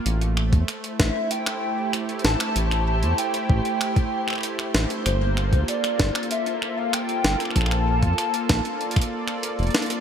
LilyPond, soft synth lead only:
\new Staff \with { instrumentName = "Soft synth lead" } { \time 4/4 \key a \phrygian \tempo 4 = 96 r4. e''8 g''4 r8 a''8~ | a''8 a''8 g''2~ g''8 r8 | c''4 d''4 e''8. f''16 g''4 | a''2. r4 | }